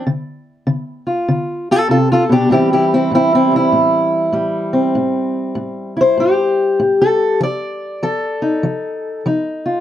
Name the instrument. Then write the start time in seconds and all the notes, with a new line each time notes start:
steel-string acoustic guitar
0.07 D3
0.67 D3
1.07 F4
1.28 D3
1.71 F4 A4
1.89 C3 F4 A4
2.12 F4 A4
2.29 B2 D4 G4
2.50 A2 E3 G3 C4 E4 G4
2.73 E4 G4
2.94 C4 E4
3.11 A2 C4 E4
3.35 C4 E4
3.51 G3
3.56 E4
3.72 A2
4.32 A2 G3
4.73 C4
4.95 A2
5.55 A2
5.97 E4
6.01 C5
6.18 A2 G4
6.80 A2
7.02 A4
7.40 F3 D5
8.03 F3 A4
8.42 D#4
8.63 F3
9.26 F3 D#4
9.66 F4